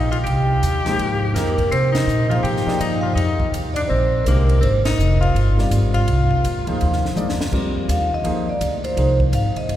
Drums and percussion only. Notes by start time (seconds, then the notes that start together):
0.12 ride
0.27 ride
0.63 hi-hat pedal, ride
0.86 snare, ride
0.99 ride
1.36 snare, hi-hat pedal, ride
1.58 kick, ride
1.72 ride
1.95 snare, ride
2.09 hi-hat pedal
2.31 ride
2.45 ride
2.57 snare
2.68 snare
2.81 hi-hat pedal, ride
3.17 ride
3.40 kick
3.54 hi-hat pedal, ride
3.76 ride
4.26 hi-hat pedal, ride
4.49 ride
4.63 ride
4.85 snare, ride
5.00 hi-hat pedal
5.22 ride
5.36 ride
5.59 snare
5.71 hi-hat pedal, ride
5.94 ride
6.08 ride
6.31 kick
6.44 hi-hat pedal, ride
6.67 ride
6.81 ride
6.93 snare
7.05 snare
7.17 hi-hat pedal, high tom
7.29 snare
7.41 snare
7.52 kick, crash
7.89 hi-hat pedal, ride
8.25 ride
8.61 hi-hat pedal, ride
8.84 ride
8.97 ride
9.20 kick
9.33 hi-hat pedal, ride
9.56 ride
9.69 ride